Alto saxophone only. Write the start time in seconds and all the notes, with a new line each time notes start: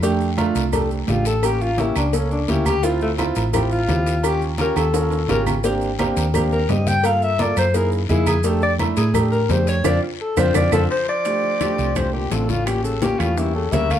0.75 A4
0.93 C4
1.09 F4
1.26 A4
1.45 G4
1.62 F4
1.79 E4
1.98 D4
2.15 C#4
2.32 D4
2.50 E4
2.66 G4
2.84 F4
3.02 A3
3.55 G4
3.72 F4
4.26 G4
4.61 A#4
4.78 A4
5.30 A#4
6.52 A#4
6.70 D#5
6.88 G5
7.06 F5
7.23 E5
7.41 D5
7.58 C5
7.76 A#4
7.93 C#4
8.11 E4
8.28 G#4
8.45 A4
8.63 D5
8.98 G#4
9.15 A4
9.32 A#4
9.51 C5
9.69 C#5
9.86 D5
10.03 F4
10.21 A4
10.38 C5
10.56 D5
10.73 A4
10.91 C5
11.09 D5
11.96 C5
12.14 G4
12.32 A4
12.50 F4
12.66 G4
12.84 A4
13.02 G4
13.19 F4
13.37 E4
13.55 A4
13.72 E5
13.91 F5